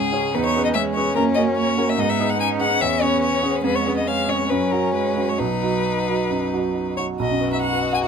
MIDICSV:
0, 0, Header, 1, 5, 480
1, 0, Start_track
1, 0, Key_signature, 5, "major"
1, 0, Tempo, 414938
1, 389, Time_signature, 4, 2, 24, 8
1, 4706, Tempo, 432900
1, 5666, Tempo, 452148
1, 8066, Tempo, 426743
1, 9061, End_track
2, 0, Start_track
2, 0, Title_t, "Violin"
2, 0, Program_c, 0, 40
2, 0, Note_on_c, 0, 68, 73
2, 397, Note_on_c, 0, 71, 83
2, 414, Note_off_c, 0, 68, 0
2, 513, Note_off_c, 0, 71, 0
2, 531, Note_on_c, 0, 73, 74
2, 740, Note_off_c, 0, 73, 0
2, 747, Note_on_c, 0, 75, 66
2, 795, Note_off_c, 0, 75, 0
2, 854, Note_on_c, 0, 76, 81
2, 946, Note_off_c, 0, 76, 0
2, 1092, Note_on_c, 0, 73, 73
2, 1329, Note_off_c, 0, 73, 0
2, 1336, Note_on_c, 0, 70, 76
2, 1428, Note_off_c, 0, 70, 0
2, 1555, Note_on_c, 0, 75, 74
2, 1648, Note_off_c, 0, 75, 0
2, 1816, Note_on_c, 0, 73, 66
2, 2190, Note_on_c, 0, 76, 68
2, 2207, Note_off_c, 0, 73, 0
2, 2308, Note_on_c, 0, 75, 76
2, 2325, Note_off_c, 0, 76, 0
2, 2424, Note_on_c, 0, 76, 71
2, 2441, Note_off_c, 0, 75, 0
2, 2659, Note_on_c, 0, 78, 69
2, 2677, Note_off_c, 0, 76, 0
2, 2771, Note_off_c, 0, 78, 0
2, 2778, Note_on_c, 0, 80, 80
2, 2871, Note_off_c, 0, 80, 0
2, 3015, Note_on_c, 0, 78, 80
2, 3254, Note_on_c, 0, 76, 74
2, 3271, Note_off_c, 0, 78, 0
2, 3493, Note_on_c, 0, 73, 75
2, 3510, Note_off_c, 0, 76, 0
2, 3718, Note_off_c, 0, 73, 0
2, 3725, Note_on_c, 0, 73, 67
2, 4114, Note_on_c, 0, 71, 64
2, 4132, Note_off_c, 0, 73, 0
2, 4198, Note_off_c, 0, 71, 0
2, 4205, Note_on_c, 0, 71, 83
2, 4341, Note_on_c, 0, 73, 68
2, 4359, Note_off_c, 0, 71, 0
2, 4585, Note_off_c, 0, 73, 0
2, 4597, Note_on_c, 0, 75, 60
2, 4715, Note_on_c, 0, 77, 72
2, 4731, Note_off_c, 0, 75, 0
2, 4951, Note_on_c, 0, 73, 63
2, 4967, Note_off_c, 0, 77, 0
2, 5183, Note_on_c, 0, 71, 64
2, 5199, Note_off_c, 0, 73, 0
2, 5420, Note_on_c, 0, 70, 63
2, 5437, Note_off_c, 0, 71, 0
2, 5666, Note_off_c, 0, 70, 0
2, 5674, Note_on_c, 0, 71, 55
2, 6044, Note_on_c, 0, 73, 51
2, 6060, Note_off_c, 0, 71, 0
2, 6156, Note_on_c, 0, 71, 72
2, 6172, Note_off_c, 0, 73, 0
2, 7819, Note_off_c, 0, 71, 0
2, 7826, Note_on_c, 0, 73, 57
2, 7911, Note_off_c, 0, 73, 0
2, 8073, Note_on_c, 0, 75, 68
2, 8426, Note_off_c, 0, 75, 0
2, 8443, Note_on_c, 0, 76, 59
2, 8535, Note_off_c, 0, 76, 0
2, 8542, Note_on_c, 0, 78, 70
2, 8897, Note_off_c, 0, 78, 0
2, 8910, Note_on_c, 0, 80, 63
2, 8958, Note_off_c, 0, 80, 0
2, 9024, Note_on_c, 0, 78, 73
2, 9061, Note_off_c, 0, 78, 0
2, 9061, End_track
3, 0, Start_track
3, 0, Title_t, "Grand piano"
3, 0, Program_c, 1, 0
3, 0, Control_c, 1, 64, 127
3, 0, Note_on_c, 1, 37, 54
3, 0, Note_on_c, 1, 44, 47
3, 0, Note_on_c, 1, 61, 42
3, 0, Note_on_c, 1, 68, 42
3, 0, Note_on_c, 1, 73, 47
3, 145, Note_off_c, 1, 61, 0
3, 145, Note_on_c, 1, 61, 42
3, 155, Note_off_c, 1, 68, 0
3, 155, Note_on_c, 1, 68, 41
3, 159, Note_off_c, 1, 73, 0
3, 159, Note_on_c, 1, 73, 44
3, 363, Note_off_c, 1, 61, 0
3, 369, Note_off_c, 1, 68, 0
3, 371, Note_off_c, 1, 73, 0
3, 407, Note_on_c, 1, 40, 52
3, 409, Control_c, 1, 64, 0
3, 413, Note_off_c, 1, 44, 0
3, 421, Note_off_c, 1, 37, 0
3, 560, Control_c, 1, 64, 127
3, 630, Note_off_c, 1, 40, 0
3, 651, Note_on_c, 1, 61, 39
3, 658, Note_on_c, 1, 68, 43
3, 658, Note_on_c, 1, 71, 45
3, 1070, Note_off_c, 1, 61, 0
3, 1073, Note_off_c, 1, 68, 0
3, 1073, Note_off_c, 1, 71, 0
3, 1110, Note_on_c, 1, 61, 39
3, 1118, Note_on_c, 1, 68, 43
3, 1122, Note_on_c, 1, 71, 44
3, 1323, Note_off_c, 1, 61, 0
3, 1327, Note_off_c, 1, 68, 0
3, 1329, Note_off_c, 1, 71, 0
3, 1349, Note_on_c, 1, 42, 58
3, 1366, Control_c, 1, 64, 0
3, 1576, Control_c, 1, 64, 127
3, 1578, Note_off_c, 1, 42, 0
3, 1584, Note_on_c, 1, 61, 43
3, 1584, Note_on_c, 1, 66, 41
3, 1589, Note_on_c, 1, 70, 44
3, 2015, Note_off_c, 1, 61, 0
3, 2015, Note_off_c, 1, 66, 0
3, 2018, Note_off_c, 1, 70, 0
3, 2048, Note_on_c, 1, 61, 38
3, 2055, Note_on_c, 1, 66, 46
3, 2060, Note_on_c, 1, 70, 49
3, 2269, Note_off_c, 1, 61, 0
3, 2273, Note_off_c, 1, 66, 0
3, 2276, Note_off_c, 1, 70, 0
3, 2290, Note_on_c, 1, 44, 57
3, 2321, Control_c, 1, 64, 0
3, 2480, Control_c, 1, 64, 127
3, 2526, Note_off_c, 1, 44, 0
3, 2540, Note_on_c, 1, 59, 43
3, 2543, Note_on_c, 1, 63, 47
3, 2548, Note_on_c, 1, 68, 48
3, 2968, Note_off_c, 1, 59, 0
3, 2969, Note_off_c, 1, 63, 0
3, 2972, Note_off_c, 1, 68, 0
3, 3003, Note_on_c, 1, 59, 39
3, 3009, Note_on_c, 1, 63, 36
3, 3019, Note_on_c, 1, 68, 37
3, 3224, Note_off_c, 1, 59, 0
3, 3227, Note_off_c, 1, 63, 0
3, 3232, Note_off_c, 1, 68, 0
3, 3255, Note_on_c, 1, 40, 53
3, 3273, Control_c, 1, 64, 0
3, 3464, Control_c, 1, 64, 127
3, 3487, Note_on_c, 1, 59, 36
3, 3488, Note_off_c, 1, 40, 0
3, 3500, Note_on_c, 1, 61, 41
3, 3502, Note_on_c, 1, 68, 41
3, 3925, Note_off_c, 1, 59, 0
3, 3932, Note_off_c, 1, 61, 0
3, 3933, Note_off_c, 1, 68, 0
3, 3964, Note_on_c, 1, 59, 40
3, 3967, Note_on_c, 1, 61, 40
3, 3970, Note_on_c, 1, 68, 44
3, 4186, Note_off_c, 1, 59, 0
3, 4188, Note_off_c, 1, 61, 0
3, 4190, Note_off_c, 1, 68, 0
3, 4212, Note_on_c, 1, 41, 49
3, 4237, Control_c, 1, 64, 0
3, 4442, Control_c, 1, 64, 127
3, 4451, Note_off_c, 1, 41, 0
3, 4467, Note_on_c, 1, 59, 41
3, 4473, Note_on_c, 1, 61, 36
3, 4482, Note_on_c, 1, 68, 40
3, 4903, Note_off_c, 1, 59, 0
3, 4906, Note_off_c, 1, 61, 0
3, 4911, Note_off_c, 1, 68, 0
3, 4942, Note_on_c, 1, 59, 33
3, 4943, Note_on_c, 1, 61, 35
3, 4952, Note_on_c, 1, 68, 36
3, 5157, Note_off_c, 1, 59, 0
3, 5158, Note_off_c, 1, 61, 0
3, 5163, Note_off_c, 1, 68, 0
3, 5195, Note_on_c, 1, 42, 49
3, 5203, Control_c, 1, 64, 0
3, 5417, Control_c, 1, 64, 127
3, 5422, Note_off_c, 1, 42, 0
3, 5429, Note_on_c, 1, 54, 35
3, 5437, Note_on_c, 1, 61, 35
3, 5438, Note_on_c, 1, 66, 39
3, 5868, Note_off_c, 1, 54, 0
3, 5871, Note_off_c, 1, 61, 0
3, 5872, Note_off_c, 1, 66, 0
3, 5906, Note_on_c, 1, 54, 36
3, 5914, Note_on_c, 1, 61, 31
3, 5920, Note_on_c, 1, 66, 36
3, 6126, Note_off_c, 1, 54, 0
3, 6130, Note_off_c, 1, 61, 0
3, 6134, Note_off_c, 1, 66, 0
3, 6161, Note_on_c, 1, 35, 47
3, 6171, Control_c, 1, 64, 0
3, 6345, Control_c, 1, 64, 127
3, 6393, Note_off_c, 1, 35, 0
3, 6396, Note_on_c, 1, 54, 34
3, 6400, Note_on_c, 1, 63, 35
3, 6406, Note_on_c, 1, 66, 38
3, 6840, Note_off_c, 1, 54, 0
3, 6842, Note_off_c, 1, 63, 0
3, 6846, Note_off_c, 1, 66, 0
3, 6889, Note_on_c, 1, 54, 29
3, 6894, Note_on_c, 1, 63, 29
3, 6896, Note_on_c, 1, 66, 34
3, 7104, Note_off_c, 1, 54, 0
3, 7107, Note_off_c, 1, 63, 0
3, 7108, Note_off_c, 1, 66, 0
3, 7120, Note_on_c, 1, 42, 41
3, 7352, Note_off_c, 1, 42, 0
3, 7364, Note_on_c, 1, 54, 34
3, 7369, Note_on_c, 1, 63, 32
3, 7370, Note_on_c, 1, 66, 35
3, 7791, Note_off_c, 1, 54, 0
3, 7793, Note_off_c, 1, 63, 0
3, 7793, Note_off_c, 1, 66, 0
3, 7830, Note_on_c, 1, 54, 33
3, 7835, Note_on_c, 1, 63, 30
3, 7844, Note_on_c, 1, 66, 37
3, 8042, Note_off_c, 1, 54, 0
3, 8045, Note_off_c, 1, 63, 0
3, 8050, Note_off_c, 1, 66, 0
3, 8065, Note_on_c, 1, 35, 53
3, 8089, Control_c, 1, 64, 0
3, 8196, Note_on_c, 1, 42, 40
3, 8301, Control_c, 1, 64, 127
3, 8306, Note_on_c, 1, 59, 43
3, 8386, Note_off_c, 1, 42, 0
3, 8419, Note_on_c, 1, 63, 45
3, 8500, Note_off_c, 1, 59, 0
3, 8542, Note_on_c, 1, 66, 44
3, 8616, Note_off_c, 1, 63, 0
3, 8669, Note_on_c, 1, 71, 41
3, 8737, Note_off_c, 1, 66, 0
3, 8773, Note_on_c, 1, 75, 43
3, 8860, Note_off_c, 1, 71, 0
3, 8892, Note_on_c, 1, 78, 52
3, 8972, Note_off_c, 1, 75, 0
3, 9008, Note_on_c, 1, 75, 50
3, 9061, Note_off_c, 1, 35, 0
3, 9061, Note_off_c, 1, 75, 0
3, 9061, Note_off_c, 1, 78, 0
3, 9061, End_track
4, 0, Start_track
4, 0, Title_t, "Violin"
4, 0, Program_c, 2, 40
4, 0, Note_on_c, 2, 61, 53
4, 265, Note_off_c, 2, 61, 0
4, 379, Note_on_c, 2, 63, 50
4, 865, Note_on_c, 2, 61, 57
4, 882, Note_off_c, 2, 63, 0
4, 2291, Note_off_c, 2, 61, 0
4, 2298, Note_on_c, 2, 63, 54
4, 3246, Note_on_c, 2, 61, 60
4, 3263, Note_off_c, 2, 63, 0
4, 4204, Note_on_c, 2, 59, 52
4, 4221, Note_off_c, 2, 61, 0
4, 4705, Note_on_c, 2, 61, 43
4, 4721, Note_off_c, 2, 59, 0
4, 5173, Note_off_c, 2, 61, 0
4, 5180, Note_on_c, 2, 61, 59
4, 6143, Note_on_c, 2, 63, 53
4, 6159, Note_off_c, 2, 61, 0
4, 7844, Note_off_c, 2, 63, 0
4, 8066, Note_on_c, 2, 66, 56
4, 9061, Note_off_c, 2, 66, 0
4, 9061, End_track
5, 0, Start_track
5, 0, Title_t, "Cello"
5, 0, Program_c, 3, 42
5, 0, Note_on_c, 3, 56, 52
5, 264, Note_off_c, 3, 56, 0
5, 377, Note_on_c, 3, 59, 52
5, 857, Note_on_c, 3, 56, 49
5, 874, Note_off_c, 3, 59, 0
5, 1322, Note_off_c, 3, 56, 0
5, 1329, Note_on_c, 3, 58, 54
5, 1804, Note_off_c, 3, 58, 0
5, 1826, Note_on_c, 3, 58, 51
5, 2314, Note_on_c, 3, 59, 51
5, 2332, Note_off_c, 3, 58, 0
5, 2760, Note_off_c, 3, 59, 0
5, 2767, Note_on_c, 3, 61, 49
5, 3250, Note_on_c, 3, 59, 48
5, 3267, Note_off_c, 3, 61, 0
5, 4201, Note_off_c, 3, 59, 0
5, 4208, Note_on_c, 3, 56, 51
5, 4693, Note_off_c, 3, 56, 0
5, 4713, Note_on_c, 3, 56, 44
5, 5177, Note_on_c, 3, 54, 48
5, 5194, Note_off_c, 3, 56, 0
5, 5660, Note_off_c, 3, 54, 0
5, 5667, Note_on_c, 3, 56, 48
5, 6152, Note_on_c, 3, 54, 45
5, 6168, Note_off_c, 3, 56, 0
5, 7849, Note_off_c, 3, 54, 0
5, 9022, Note_on_c, 3, 66, 63
5, 9061, Note_off_c, 3, 66, 0
5, 9061, End_track
0, 0, End_of_file